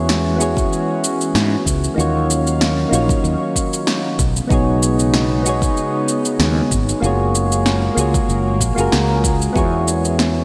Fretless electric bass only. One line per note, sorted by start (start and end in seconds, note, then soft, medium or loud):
0.00 0.63 E2 medium
1.35 1.55 G#2 medium
1.66 1.87 C#2 medium
1.98 2.84 D#2 medium
2.92 3.13 A#1 medium
3.24 3.35 D#2 medium
4.19 4.39 B1 medium
4.51 5.68 B1 medium
6.39 6.60 D#2 medium
6.71 6.92 G#1 medium
7.02 7.89 F#1 medium
7.97 8.18 C#2 medium
8.29 8.61 F#1 medium
8.61 8.71 A#1 medium
8.77 8.87 F#1 medium
8.93 9.47 C#2 medium
9.56 10.44 E2 medium